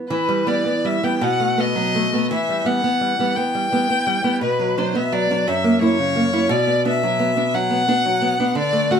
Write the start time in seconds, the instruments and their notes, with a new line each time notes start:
0.10 nylon-string guitar E3, violin B4
0.28 nylon-string guitar G3
0.47 nylon-string guitar G3 B3, violin D5
0.66 nylon-string guitar B3
0.85 nylon-string guitar G3, violin E5
1.03 nylon-string guitar G3 B3, violin G5
1.21 nylon-string guitar B2, violin F#5
1.40 nylon-string guitar A3
1.58 nylon-string guitar A3 B3, violin D#5
1.75 nylon-string guitar F#3
1.95 nylon-string guitar A3
2.13 nylon-string guitar A3 B3
2.31 nylon-string guitar E3, violin E5
2.49 nylon-string guitar G3
2.65 nylon-string guitar G3 B3, violin F#5
2.84 nylon-string guitar B3
3.01 nylon-string guitar G3
3.19 nylon-string guitar G3 B3
3.36 nylon-string guitar B3, violin G5
3.55 nylon-string guitar G3
3.72 nylon-string guitar G3 B3
3.90 nylon-string guitar B3
4.07 nylon-string guitar G3
4.24 nylon-string guitar G3 B3
4.41 nylon-string guitar B2, violin B4
4.60 nylon-string guitar F#3
4.77 nylon-string guitar F#3 D4, violin C5
4.95 nylon-string guitar B3, violin E5
5.12 nylon-string guitar F#3, violin D5
5.31 nylon-string guitar F#3 D4
5.47 nylon-string guitar F#2, violin E5
5.64 nylon-string guitar A#3
5.81 nylon-string guitar A#3 E4, violin C#5
5.99 nylon-string guitar C#3
6.16 nylon-string guitar A#3
6.33 nylon-string guitar A#3 E4
6.49 nylon-string guitar B2, violin D5
6.67 nylon-string guitar B3
6.85 nylon-string guitar B3 D4, violin E5
7.03 nylon-string guitar F#3
7.19 nylon-string guitar B3
7.36 nylon-string guitar B3 D4
7.54 nylon-string guitar F#3, violin F#5
7.70 nylon-string guitar B3
7.88 nylon-string guitar B3 D4
8.05 nylon-string guitar F#3
8.21 nylon-string guitar B3
8.40 nylon-string guitar B3 D4
8.55 nylon-string guitar D3, violin D5
8.73 nylon-string guitar A3
8.91 nylon-string guitar A3 F#4, violin F#5